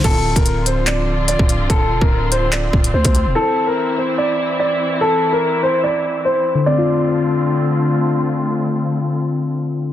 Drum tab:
CC |x---------------|----------------|----------------|----------------|
HH |x--xx-x-x---x-x-|x-----x-x--x-xx-|----------------|----------------|
CP |--------x-------|--------x-------|----------------|----------------|
BD |o--o---------o--|o--o------o--o--|----------------|----------------|

CC |----------------|----------------|
HH |----------------|----------------|
CP |----------------|----------------|
BD |----------------|----------------|